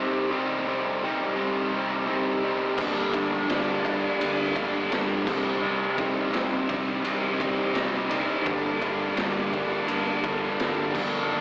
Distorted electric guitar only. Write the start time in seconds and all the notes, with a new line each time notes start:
Already playing: C3 G3 C4 D#4
0.30 C3 G3 C4 D#4
0.67 C3 G3 C4 D#4
1.03 C3 G3 C4 D#4
1.36 C3 G3 C4 D#4
1.72 C3 G3 C4 D#4
2.07 C3 G3 C4 D#4
2.44 C3 G3 C4 D#4
2.79 G2 D3 G3 A#3 D4
3.14 G2 D3 G3 A#3 D4
3.47 G2 D3 G3 A#3 D4
3.83 G2 D3 G3 A#3 D4
4.20 G2 D3 G3 A#3 D4
4.56 G2 D3 G3 A#3 D4
4.91 G2 D3 G3 A#3 D4
5.27 C3 G3 C4 D#4
5.62 C3 G3 C4 D#4
5.98 C3 G3 C4 D#4
6.32 C3 G3 C4 D#4
6.69 C3 G3 C4 D#4
7.04 C3 G3 C4 D#4
7.40 C3 G3 C4 D#4
7.73 C3 G3 C4 D#4
8.09 C3 G3 C4 D#4
8.44 G2 D3 G3 A#3 D4
8.80 G2 D3 G3 A#3 D4
9.16 G2 D3 G3 A#3 D4
9.52 G2 D3 G3 A#3 D4
9.88 G2 D3 G3 A#3 D4
10.24 G2 D3 G3 A#3 D4
10.59 G2 D3 G3 A#3 D4
10.94 G2 D3 G3 A#3 D4
11.31 G2 D3 G3 A#3 D4